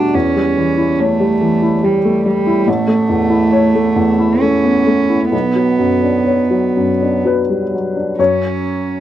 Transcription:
0.00 0.17 B2 soft
0.00 0.17 G3 soft
0.00 0.16 A3 soft
0.00 0.15 D4 medium
0.00 0.17 F#4 soft
0.00 0.16 E5 soft
0.14 2.64 E2 soft
0.14 1.00 C#4 medium
0.36 0.70 G3 soft
0.57 0.91 E3 soft
0.78 1.11 E4 soft
0.99 1.86 A3 medium
0.99 1.33 C#5 soft
1.20 1.54 G3 soft
1.41 1.75 E3 soft
1.62 1.96 E4 soft
1.83 2.17 G3 soft
1.83 2.26 G3 medium
2.05 2.26 A3 soft
2.26 2.59 G3 soft
2.26 2.70 G3 medium
2.47 2.68 E4 soft
2.67 5.28 A1 soft
2.67 4.42 A3 medium
2.88 3.22 A3 soft
3.09 3.44 E2 soft
3.30 3.65 E4 soft
3.52 3.87 C#5 soft
3.75 4.10 A3 soft
3.96 4.32 E2 soft
4.19 4.54 E4 soft
4.41 4.77 A3 soft
4.41 5.32 C#4 medium
4.64 4.86 B3 soft
4.86 5.23 A3 soft
5.09 5.33 E4 soft
5.32 8.15 B1 soft
5.32 7.22 B3 medium
5.55 5.93 F#3 soft
5.79 6.17 F#2 soft
6.03 6.41 D4 soft
6.26 6.66 C#5 soft
6.50 6.91 F#3 soft
6.77 7.16 F#2 soft
7.02 7.40 D4 soft
7.25 7.63 F#3 soft
7.25 8.15 B4 soft
7.49 7.73 G3 soft
7.74 8.10 F#3 soft
7.97 8.19 D4 soft
8.19 9.00 F#2 soft
8.19 9.00 C#4 medium
8.19 9.00 C#5 medium

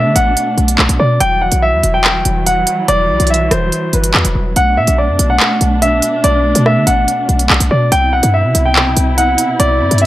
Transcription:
0.00 1.17 B2 medium
0.00 1.17 A3 medium
0.00 1.17 D4 medium
0.00 0.14 E5 medium
0.05 0.15 D3 loud
0.16 0.36 A1 loud
0.16 0.96 F#5 medium
0.16 closed hi-hat medium
0.37 closed hi-hat medium
0.58 0.78 B1 loud
0.58 closed hi-hat soft
0.68 closed hi-hat medium
0.78 0.89 B1 loud
0.78 clap loud
0.89 0.99 B1 loud
0.89 closed hi-hat medium
0.99 1.20 B2 loud
0.99 1.19 D5 medium
1.20 1.51 E1 loud
1.20 4.53 E3 medium
1.20 4.53 F#3 medium
1.20 4.53 G3 medium
1.20 1.40 G5 loud
1.20 closed hi-hat medium
1.42 1.61 F#5 medium
1.52 1.74 B1 loud
1.52 closed hi-hat medium
1.62 1.92 E5 medium
1.73 1.83 E2 loud
1.83 2.24 E1 loud
1.83 closed hi-hat medium
1.94 2.43 G5 medium
2.04 clap loud
2.25 2.66 E1 loud
2.25 closed hi-hat medium
2.46 2.86 F#5 medium
2.46 closed hi-hat medium
2.67 closed hi-hat medium
2.88 3.11 E1 loud
2.88 3.28 D5 loud
2.88 closed hi-hat medium
3.09 3.19 B1 loud
3.20 3.50 B1 loud
3.20 closed hi-hat medium
3.27 3.50 E5 medium
3.27 closed hi-hat medium
3.34 closed hi-hat medium
3.51 3.71 E1 loud
3.51 3.91 C5 medium
3.51 cross-stick loud
3.51 closed hi-hat medium
3.72 closed hi-hat medium
3.93 4.13 G1 loud
3.93 4.53 B4 medium
3.93 closed hi-hat medium
4.04 closed hi-hat medium
4.14 4.24 E2 loud
4.14 clap loud
4.25 4.35 E1 loud
4.25 closed hi-hat medium
4.35 4.55 E1 loud
4.56 4.79 B1 loud
4.56 7.89 B2 medium
4.56 7.89 A3 medium
4.56 7.88 D4 medium
4.56 4.76 F#5 loud
4.56 closed hi-hat medium
4.77 4.87 B2 loud
4.77 4.97 E5 medium
4.87 5.10 B1 loud
4.87 closed hi-hat medium
4.98 5.28 D5 medium
5.09 5.19 F#2 loud
5.19 5.39 B1 loud
5.19 closed hi-hat medium
5.30 5.79 F#5 medium
5.40 clap loud
5.61 6.01 B1 loud
5.61 closed hi-hat medium
5.82 6.21 E5 medium
5.82 closed hi-hat medium
6.02 closed hi-hat medium
6.24 6.54 B1 loud
6.24 6.63 D5 loud
6.24 closed hi-hat medium
6.55 6.78 B2 loud
6.55 closed hi-hat medium
6.66 6.86 E5 medium
6.66 cross-stick medium
6.76 6.86 D3 loud
6.87 7.07 A1 loud
6.87 7.67 F#5 medium
6.87 closed hi-hat medium
7.08 closed hi-hat medium
7.29 7.49 B1 loud
7.29 closed hi-hat soft
7.39 closed hi-hat medium
7.50 7.60 B1 loud
7.50 clap loud
7.60 7.70 B1 loud
7.60 closed hi-hat medium
7.71 7.91 B2 loud
7.71 7.90 D5 medium
7.92 8.22 C2 loud
7.92 10.06 B2 medium
7.92 10.06 C3 medium
7.92 10.06 E4 medium
7.92 8.11 G5 loud
7.92 closed hi-hat medium
8.13 8.32 F#5 medium
8.23 8.46 G2 loud
8.23 closed hi-hat medium
8.34 8.63 E5 medium
8.44 8.54 C3 loud
8.55 8.95 C2 loud
8.55 closed hi-hat medium
8.66 9.15 G5 medium
8.76 clap loud
8.97 9.37 C2 loud
8.97 closed hi-hat medium
9.18 9.57 F#5 medium
9.18 closed hi-hat medium
9.38 closed hi-hat medium
9.60 9.82 C2 loud
9.60 9.99 D5 loud
9.60 closed hi-hat medium
9.81 9.91 G2 loud
9.91 10.06 G2 loud
9.91 closed hi-hat medium
9.98 10.06 E5 medium
9.98 closed hi-hat medium

